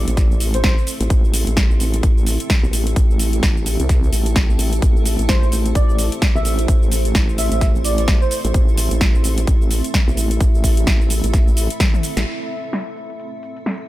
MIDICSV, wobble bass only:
0, 0, Header, 1, 2, 480
1, 0, Start_track
1, 0, Key_signature, 0, "minor"
1, 0, Tempo, 465116
1, 1138, Time_signature, 4, 2, 24, 8
1, 14329, End_track
2, 0, Start_track
2, 0, Title_t, "Wobble bass"
2, 0, Program_c, 0, 39
2, 80, Note_on_c, 0, 33, 100
2, 297, Note_off_c, 0, 33, 0
2, 319, Note_on_c, 0, 33, 97
2, 776, Note_off_c, 0, 33, 0
2, 1038, Note_on_c, 0, 33, 99
2, 1122, Note_off_c, 0, 33, 0
2, 1138, Note_on_c, 0, 33, 96
2, 1496, Note_off_c, 0, 33, 0
2, 1518, Note_on_c, 0, 33, 98
2, 1736, Note_off_c, 0, 33, 0
2, 1759, Note_on_c, 0, 33, 95
2, 2082, Note_off_c, 0, 33, 0
2, 2097, Note_on_c, 0, 33, 93
2, 2456, Note_off_c, 0, 33, 0
2, 2718, Note_on_c, 0, 35, 92
2, 2802, Note_off_c, 0, 35, 0
2, 2817, Note_on_c, 0, 33, 89
2, 3042, Note_off_c, 0, 33, 0
2, 3057, Note_on_c, 0, 33, 89
2, 3522, Note_off_c, 0, 33, 0
2, 3537, Note_on_c, 0, 33, 89
2, 3896, Note_off_c, 0, 33, 0
2, 3919, Note_on_c, 0, 36, 97
2, 4242, Note_off_c, 0, 36, 0
2, 4258, Note_on_c, 0, 33, 101
2, 4616, Note_off_c, 0, 33, 0
2, 4637, Note_on_c, 0, 33, 90
2, 4722, Note_off_c, 0, 33, 0
2, 4736, Note_on_c, 0, 33, 95
2, 4962, Note_off_c, 0, 33, 0
2, 4977, Note_on_c, 0, 33, 97
2, 5336, Note_off_c, 0, 33, 0
2, 5357, Note_on_c, 0, 33, 96
2, 5576, Note_off_c, 0, 33, 0
2, 5597, Note_on_c, 0, 33, 101
2, 5922, Note_off_c, 0, 33, 0
2, 5938, Note_on_c, 0, 33, 93
2, 6296, Note_off_c, 0, 33, 0
2, 6556, Note_on_c, 0, 35, 92
2, 6641, Note_off_c, 0, 35, 0
2, 6656, Note_on_c, 0, 33, 97
2, 6881, Note_off_c, 0, 33, 0
2, 6897, Note_on_c, 0, 33, 94
2, 7362, Note_off_c, 0, 33, 0
2, 7377, Note_on_c, 0, 33, 96
2, 7736, Note_off_c, 0, 33, 0
2, 7757, Note_on_c, 0, 33, 96
2, 7975, Note_off_c, 0, 33, 0
2, 7997, Note_on_c, 0, 33, 96
2, 8455, Note_off_c, 0, 33, 0
2, 8717, Note_on_c, 0, 33, 97
2, 8801, Note_off_c, 0, 33, 0
2, 8817, Note_on_c, 0, 33, 93
2, 9176, Note_off_c, 0, 33, 0
2, 9197, Note_on_c, 0, 33, 104
2, 9415, Note_off_c, 0, 33, 0
2, 9438, Note_on_c, 0, 33, 93
2, 9762, Note_off_c, 0, 33, 0
2, 9778, Note_on_c, 0, 33, 97
2, 10136, Note_off_c, 0, 33, 0
2, 10399, Note_on_c, 0, 35, 94
2, 10483, Note_off_c, 0, 35, 0
2, 10497, Note_on_c, 0, 33, 90
2, 10722, Note_off_c, 0, 33, 0
2, 10738, Note_on_c, 0, 33, 90
2, 11202, Note_off_c, 0, 33, 0
2, 11218, Note_on_c, 0, 33, 93
2, 11576, Note_off_c, 0, 33, 0
2, 11600, Note_on_c, 0, 33, 101
2, 11817, Note_off_c, 0, 33, 0
2, 11839, Note_on_c, 0, 33, 97
2, 12057, Note_off_c, 0, 33, 0
2, 12558, Note_on_c, 0, 33, 98
2, 12642, Note_off_c, 0, 33, 0
2, 14329, End_track
0, 0, End_of_file